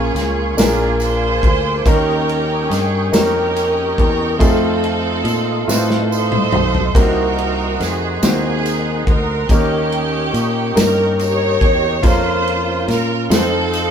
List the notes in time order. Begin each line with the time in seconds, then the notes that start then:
Already playing: A#1 A#2 A#3 C#4 F4 G#4 A#4 F5 G#5 C#6
0.15 C#2, snare, ride, tambourine
0.57 A#1 A#2 A#3 D4 F4 G#4 A#4 F5 D6, snare, ride, tambourine
0.61 G#4
1.00 F4 G#4 C5, ride, tambourine
1.43 D2, kick, ride
1.84 D#2 D#3 A#3 C#4 D#4 G4 A#4 G5 C#6, kick, ride, tambourine
2.29 ride
2.70 G2 G#4, snare, ride, tambourine
3.12 F2 A#3 C#4 D#4 G4 A#4, snare, ride, tambourine
3.56 ride, tambourine
3.98 E2 A#4, kick, ride
4.39 F2 A3 C4 D#4 F4 G#4 A4 F5 C6, kick, ride, tambourine
4.46 A4
4.84 ride
5.24 A#2, ride, tambourine
5.67 A2 A3 C4 D#4 F4 A4 B4, snare, tambourine
5.75 C5
5.90 snare
6.11 D#4 A4 C5, tambourine
6.32 mid tom
6.52 B1, mid tom
6.75 floor tom
6.94 C2 C3 A#3 C4 C#4 D#4 F#4 A#4 F#5, kick, ride, tambourine
7.01 D#4
7.38 ride
7.80 F2 G#4, snare, ride, tambourine
8.22 D#2 A#3 C4 D#4 F#4 G#4 C5, snare, ride, tambourine
8.66 ride, tambourine
9.07 D2 A#4, kick, ride
9.49 D#2 D#3 A#3 C#4 D#4 G4 A#4 G5 C#6, kick, ride, tambourine
9.92 ride
10.33 A#2, ride, tambourine
10.75 G2 A#3 C#4 D#4 G4 A#4, snare, ride, tambourine
11.19 G4 A#4 C#5, ride, tambourine
11.61 E2, kick, ride
12.03 F2 A#3 C#4 F4 A#4 C5 F5, kick, ride, tambourine
12.07 C#4 F5
12.47 ride
12.88 A#2 A#4, snare, ride, tambourine
13.30 F2 C4 D#4 F4 A4 B4 D#5 C6, snare, ride, tambourine
13.38 C5
13.73 ride, tambourine